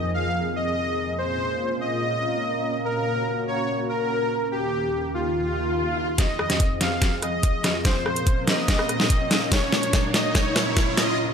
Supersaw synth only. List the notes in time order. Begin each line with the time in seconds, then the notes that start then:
0.14 F5
0.56 D#5
1.18 C5
1.81 D#5
2.85 A#4
3.48 C#5
3.89 A#4
4.52 G4
5.14 F4
6.18 D#5
6.81 F5
7.22 D#5
7.85 C5
8.47 D#5
9.52 C#5
10.14 D#5
10.35 C#5
10.98 D#5